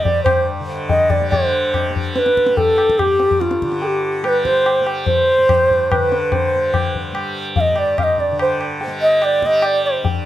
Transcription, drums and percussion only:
0.05 tabla tin medium
0.05 tabla ge medium
0.26 tabla na loud
0.26 tabla ge medium
0.89 tabla tin medium
0.89 tabla ge medium
1.10 tabla tin medium
1.10 tabla ge medium
1.32 tabla tin medium
1.32 tabla ge medium
1.74 tabla na medium
1.74 tabla ge medium
1.96 tabla ge medium
2.16 tabla te medium
2.26 tabla te medium
2.37 tabla ke medium
2.46 tabla te medium
2.57 tabla tin medium
2.57 tabla ge medium
2.78 tabla na medium
2.89 tabla ke medium
2.99 tabla na medium
2.99 tabla ge medium
3.20 tabla te medium
3.31 tabla ge soft
3.41 tabla te medium
3.51 tabla te medium
3.62 tabla ke medium
3.72 tabla te medium
3.82 tabla tin medium
4.24 tabla na medium
4.45 tabla ke medium
4.66 tabla na medium
4.87 tabla na medium
5.06 tabla tin medium
5.06 tabla ge medium
5.49 tabla na medium
5.49 tabla ge medium
5.70 tabla ge soft
5.92 tabla na medium
5.92 tabla ge medium
6.12 tabla te medium
6.32 tabla tin loud
6.32 tabla ge medium
6.74 tabla na medium
6.74 tabla ge medium
6.95 tabla ge soft
7.15 tabla na medium
7.56 tabla tin medium
7.56 tabla ge medium
7.76 tabla na medium
7.98 tabla na medium
7.98 tabla ge medium
8.18 tabla ge soft
8.39 tabla na medium
8.61 tabla na medium
8.81 tabla tin medium
9.22 tabla na medium
9.42 tabla ke medium
9.62 tabla na medium
10.05 tabla tin medium
10.05 tabla ge medium

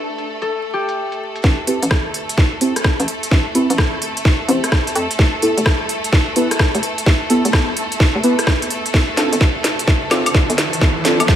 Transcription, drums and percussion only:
0.18 closed hi-hat soft
0.42 closed hi-hat medium
0.89 closed hi-hat medium
1.12 closed hi-hat soft
1.36 closed hi-hat medium
1.44 kick medium
1.44 snare soft
1.67 open hi-hat loud
1.82 closed hi-hat medium
1.91 kick medium
1.91 cross-stick loud
1.91 snare soft
2.14 open hi-hat loud
2.29 closed hi-hat medium
2.38 kick loud
2.38 snare soft
2.61 open hi-hat loud
2.76 cross-stick medium
2.76 closed hi-hat medium
2.84 kick loud
2.84 cross-stick loud
2.84 snare soft
3.00 closed hi-hat medium
3.08 open hi-hat loud
3.23 closed hi-hat medium
3.31 kick medium
3.31 snare medium
3.55 open hi-hat loud
3.70 closed hi-hat medium
3.78 kick loud
3.78 cross-stick loud
3.78 snare medium
4.02 open hi-hat loud
4.17 closed hi-hat medium
4.25 kick loud
4.25 snare medium
4.49 open hi-hat loud
4.64 cross-stick medium
4.64 closed hi-hat medium
4.72 kick loud
4.72 cross-stick loud
4.72 snare medium
4.87 closed hi-hat soft
4.95 open hi-hat loud
5.11 closed hi-hat medium
5.19 kick loud
5.19 snare medium
5.42 open hi-hat loud
5.58 closed hi-hat medium
5.66 kick loud
5.66 cross-stick loud
5.66 snare medium
5.89 open hi-hat loud
6.04 closed hi-hat medium
6.13 kick loud
6.13 snare medium
6.36 open hi-hat loud
6.51 cross-stick medium
6.51 closed hi-hat medium
6.59 kick loud
6.59 cross-stick loud
6.59 snare medium
6.75 closed hi-hat soft
6.83 open hi-hat loud
6.98 closed hi-hat medium
7.06 kick medium
7.06 snare medium
7.30 open hi-hat loud
7.45 closed hi-hat medium
7.53 kick loud
7.53 cross-stick loud
7.53 snare medium
7.77 open hi-hat loud
7.92 closed hi-hat medium
8.00 kick loud
8.00 snare medium
8.24 open hi-hat loud
8.39 cross-stick medium
8.39 closed hi-hat medium
8.47 kick loud
8.47 cross-stick loud
8.47 snare medium
8.62 closed hi-hat medium
8.70 open hi-hat loud
8.86 closed hi-hat medium
8.94 kick loud
8.94 snare medium
9.17 snare medium
9.17 open hi-hat loud
9.33 closed hi-hat medium
9.41 kick loud
9.41 snare medium
9.64 snare medium
9.64 open hi-hat loud
9.79 closed hi-hat medium
9.88 kick loud
9.88 snare medium
10.11 snare medium
10.11 open hi-hat medium
10.11 high woodblock medium
10.26 closed hi-hat medium
10.26 high woodblock medium
10.34 kick medium
10.34 snare medium
10.50 closed hi-hat medium
10.58 snare medium
10.58 open hi-hat loud
10.73 closed hi-hat medium
10.81 kick loud
10.81 snare medium
11.05 snare medium
11.05 open hi-hat loud
11.20 closed hi-hat medium
11.20 high woodblock medium
11.28 kick loud
11.28 snare medium

